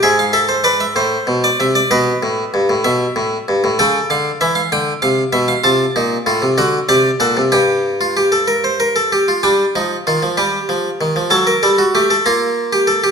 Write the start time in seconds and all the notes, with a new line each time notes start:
0.03 G#2 G#4 E5
0.19 F5
0.33 A4 E5
0.49 C5
0.64 B4 D5
0.80 E5
0.96 A2 C5
1.27 B2
1.44 D5
1.60 C3 E5
1.75 D5
1.91 B2 B4 D#5
2.23 A2
2.54 G2
2.69 A2
2.84 B2 E5
3.16 A2
3.48 G2
3.64 A2
3.79 C#3 A4 G5
4.10 D3 F5
4.41 E3 E5
4.55 F5
4.72 D3 G5
5.02 C3 F5
5.33 B2 E5
5.48 F5
5.64 C3 F4 A5
5.96 A#2 D#4
6.26 A2 F4
6.42 C3
6.58 D3 F#4 F#5
6.89 C3 G4 D5
7.20 A#2 A4 F#5
7.37 C3
7.52 G2 G4 G5
8.01 F4
8.17 G4
8.32 A4
8.48 A#4
8.64 C5
8.80 A#4
8.96 A4
9.12 G4
9.28 F4
9.43 G3 D4 G5
9.76 F3 D#4
10.07 D#3 F4
10.22 F3
10.37 G3 G4
10.69 F3
11.01 D#3
11.16 F3
11.30 F#3 A4 A5
11.47 A#4
11.63 G3 A4
11.78 F#4
11.95 A3 G4
12.10 A4
12.26 A#3 F4 A#5
12.73 G4
12.87 A4
13.04 G4